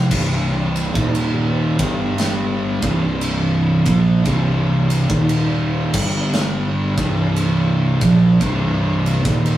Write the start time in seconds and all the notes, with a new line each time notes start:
Already playing: F2 C3 F3
0.11 C1 C2 G2 C3, kick, crash
0.76 ride
0.95 D#1 D#2 A#2 D#3, kick
1.15 ride
1.79 G1 G2 D3 G3, kick, ride
2.18 snare, ride
2.82 C1 C2 G2 C3, kick, ride
3.21 ride
3.86 A#1 A#2 F3 A#3, kick, ride
4.25 C1 C2 G2 C3, kick, ride
4.90 ride
5.09 D#1 D#2 A#2 D#3, kick
5.29 ride
5.93 G1 G2 D3 G3, kick, crash
6.34 snare
6.97 C1 C2 G2 C3, kick, ride
7.36 ride
8.01 A#1 A#2 F3 A#3, kick, ride
8.41 C1 C2 G2 C3, kick, ride
9.06 ride
9.24 D#1 D#2 A#2 D#3, kick, snare
9.46 ride